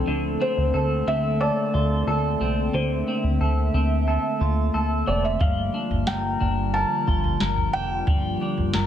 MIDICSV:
0, 0, Header, 1, 6, 480
1, 0, Start_track
1, 0, Tempo, 666667
1, 53, Time_signature, 4, 2, 24, 8
1, 6384, End_track
2, 0, Start_track
2, 0, Title_t, "Felt piano"
2, 0, Program_c, 0, 0
2, 298, Note_on_c, 0, 72, 91
2, 775, Note_on_c, 0, 76, 97
2, 790, Note_off_c, 0, 72, 0
2, 1012, Note_on_c, 0, 74, 90
2, 1021, Note_off_c, 0, 76, 0
2, 1972, Note_on_c, 0, 72, 60
2, 2001, Note_off_c, 0, 74, 0
2, 2664, Note_off_c, 0, 72, 0
2, 3653, Note_on_c, 0, 74, 70
2, 3777, Note_off_c, 0, 74, 0
2, 3777, Note_on_c, 0, 76, 69
2, 3887, Note_off_c, 0, 76, 0
2, 3894, Note_on_c, 0, 77, 73
2, 4372, Note_on_c, 0, 79, 85
2, 4388, Note_off_c, 0, 77, 0
2, 4851, Note_on_c, 0, 81, 86
2, 4867, Note_off_c, 0, 79, 0
2, 5303, Note_off_c, 0, 81, 0
2, 5568, Note_on_c, 0, 79, 109
2, 6022, Note_off_c, 0, 79, 0
2, 6384, End_track
3, 0, Start_track
3, 0, Title_t, "Clean electric guitar"
3, 0, Program_c, 1, 27
3, 0, Note_on_c, 1, 50, 71
3, 0, Note_on_c, 1, 60, 51
3, 0, Note_on_c, 1, 64, 54
3, 0, Note_on_c, 1, 69, 57
3, 53, Note_off_c, 1, 50, 0
3, 53, Note_on_c, 1, 50, 65
3, 101, Note_off_c, 1, 64, 0
3, 288, Note_off_c, 1, 60, 0
3, 291, Note_on_c, 1, 60, 51
3, 529, Note_off_c, 1, 69, 0
3, 532, Note_on_c, 1, 69, 56
3, 764, Note_off_c, 1, 60, 0
3, 772, Note_on_c, 1, 60, 52
3, 1003, Note_off_c, 1, 69, 0
3, 1012, Note_on_c, 1, 69, 60
3, 1252, Note_on_c, 1, 65, 56
3, 1486, Note_off_c, 1, 69, 0
3, 1494, Note_on_c, 1, 69, 60
3, 1725, Note_off_c, 1, 60, 0
3, 1733, Note_on_c, 1, 60, 55
3, 1971, Note_off_c, 1, 50, 0
3, 1974, Note_on_c, 1, 50, 62
3, 2208, Note_off_c, 1, 60, 0
3, 2217, Note_on_c, 1, 60, 55
3, 2445, Note_off_c, 1, 69, 0
3, 2454, Note_on_c, 1, 69, 51
3, 2687, Note_off_c, 1, 60, 0
3, 2695, Note_on_c, 1, 60, 55
3, 2927, Note_off_c, 1, 69, 0
3, 2935, Note_on_c, 1, 69, 56
3, 3173, Note_off_c, 1, 65, 0
3, 3176, Note_on_c, 1, 65, 55
3, 3405, Note_off_c, 1, 69, 0
3, 3414, Note_on_c, 1, 69, 66
3, 3644, Note_off_c, 1, 60, 0
3, 3653, Note_on_c, 1, 60, 47
3, 3893, Note_on_c, 1, 55, 65
3, 3941, Note_off_c, 1, 60, 0
3, 3941, Note_off_c, 1, 69, 0
3, 4134, Note_on_c, 1, 62, 49
3, 4373, Note_on_c, 1, 70, 57
3, 4494, Note_off_c, 1, 50, 0
3, 4602, Note_off_c, 1, 62, 0
3, 4611, Note_on_c, 1, 62, 53
3, 4845, Note_off_c, 1, 70, 0
3, 4854, Note_on_c, 1, 70, 59
3, 5092, Note_off_c, 1, 65, 0
3, 5095, Note_on_c, 1, 65, 55
3, 5328, Note_off_c, 1, 70, 0
3, 5337, Note_on_c, 1, 70, 66
3, 5567, Note_off_c, 1, 62, 0
3, 5576, Note_on_c, 1, 62, 47
3, 5812, Note_off_c, 1, 55, 0
3, 5815, Note_on_c, 1, 55, 60
3, 6049, Note_off_c, 1, 62, 0
3, 6058, Note_on_c, 1, 62, 52
3, 6286, Note_off_c, 1, 70, 0
3, 6295, Note_on_c, 1, 70, 61
3, 6384, Note_off_c, 1, 55, 0
3, 6384, Note_off_c, 1, 62, 0
3, 6384, Note_off_c, 1, 65, 0
3, 6384, Note_off_c, 1, 70, 0
3, 6384, End_track
4, 0, Start_track
4, 0, Title_t, "Ambient pad"
4, 0, Program_c, 2, 92
4, 0, Note_on_c, 2, 57, 64
4, 0, Note_on_c, 2, 69, 83
4, 48, Note_on_c, 2, 58, 70
4, 52, Note_on_c, 2, 60, 74
4, 53, Note_on_c, 2, 50, 77
4, 1943, Note_off_c, 2, 69, 0
4, 1971, Note_on_c, 2, 76, 87
4, 3864, Note_off_c, 2, 60, 0
4, 3865, Note_off_c, 2, 57, 0
4, 3873, Note_off_c, 2, 76, 0
4, 3892, Note_on_c, 2, 53, 67
4, 3892, Note_on_c, 2, 55, 71
4, 3892, Note_on_c, 2, 65, 82
4, 6384, Note_off_c, 2, 50, 0
4, 6384, Note_off_c, 2, 53, 0
4, 6384, Note_off_c, 2, 55, 0
4, 6384, Note_off_c, 2, 58, 0
4, 6384, Note_off_c, 2, 65, 0
4, 6384, End_track
5, 0, Start_track
5, 0, Title_t, "Analog synth bass"
5, 0, Program_c, 3, 38
5, 53, Note_on_c, 3, 38, 104
5, 264, Note_off_c, 3, 38, 0
5, 414, Note_on_c, 3, 38, 83
5, 519, Note_off_c, 3, 38, 0
5, 531, Note_on_c, 3, 38, 85
5, 743, Note_off_c, 3, 38, 0
5, 771, Note_on_c, 3, 38, 91
5, 1088, Note_off_c, 3, 38, 0
5, 1253, Note_on_c, 3, 38, 97
5, 1464, Note_off_c, 3, 38, 0
5, 1490, Note_on_c, 3, 38, 102
5, 1702, Note_off_c, 3, 38, 0
5, 1730, Note_on_c, 3, 36, 77
5, 1942, Note_off_c, 3, 36, 0
5, 1970, Note_on_c, 3, 38, 107
5, 2183, Note_off_c, 3, 38, 0
5, 2332, Note_on_c, 3, 38, 81
5, 2438, Note_off_c, 3, 38, 0
5, 2454, Note_on_c, 3, 38, 89
5, 2664, Note_off_c, 3, 38, 0
5, 2692, Note_on_c, 3, 38, 94
5, 3009, Note_off_c, 3, 38, 0
5, 3174, Note_on_c, 3, 38, 83
5, 3385, Note_off_c, 3, 38, 0
5, 3415, Note_on_c, 3, 38, 102
5, 3625, Note_off_c, 3, 38, 0
5, 3658, Note_on_c, 3, 29, 85
5, 3867, Note_off_c, 3, 29, 0
5, 3890, Note_on_c, 3, 31, 107
5, 4103, Note_off_c, 3, 31, 0
5, 4252, Note_on_c, 3, 31, 79
5, 4358, Note_off_c, 3, 31, 0
5, 4373, Note_on_c, 3, 31, 82
5, 4584, Note_off_c, 3, 31, 0
5, 4615, Note_on_c, 3, 31, 89
5, 4931, Note_off_c, 3, 31, 0
5, 5094, Note_on_c, 3, 31, 93
5, 5305, Note_off_c, 3, 31, 0
5, 5334, Note_on_c, 3, 31, 89
5, 5545, Note_off_c, 3, 31, 0
5, 5574, Note_on_c, 3, 29, 83
5, 5785, Note_off_c, 3, 29, 0
5, 5812, Note_on_c, 3, 31, 99
5, 6023, Note_off_c, 3, 31, 0
5, 6174, Note_on_c, 3, 31, 77
5, 6279, Note_off_c, 3, 31, 0
5, 6297, Note_on_c, 3, 31, 91
5, 6384, Note_off_c, 3, 31, 0
5, 6384, End_track
6, 0, Start_track
6, 0, Title_t, "Drums"
6, 3891, Note_on_c, 9, 43, 101
6, 3892, Note_on_c, 9, 36, 102
6, 3963, Note_off_c, 9, 43, 0
6, 3964, Note_off_c, 9, 36, 0
6, 4254, Note_on_c, 9, 43, 60
6, 4326, Note_off_c, 9, 43, 0
6, 4370, Note_on_c, 9, 38, 95
6, 4442, Note_off_c, 9, 38, 0
6, 4613, Note_on_c, 9, 43, 58
6, 4685, Note_off_c, 9, 43, 0
6, 5093, Note_on_c, 9, 36, 77
6, 5165, Note_off_c, 9, 36, 0
6, 5213, Note_on_c, 9, 43, 55
6, 5285, Note_off_c, 9, 43, 0
6, 5331, Note_on_c, 9, 38, 84
6, 5403, Note_off_c, 9, 38, 0
6, 5452, Note_on_c, 9, 43, 55
6, 5524, Note_off_c, 9, 43, 0
6, 5812, Note_on_c, 9, 36, 103
6, 5812, Note_on_c, 9, 43, 107
6, 5884, Note_off_c, 9, 36, 0
6, 5884, Note_off_c, 9, 43, 0
6, 6173, Note_on_c, 9, 43, 61
6, 6245, Note_off_c, 9, 43, 0
6, 6289, Note_on_c, 9, 38, 87
6, 6361, Note_off_c, 9, 38, 0
6, 6384, End_track
0, 0, End_of_file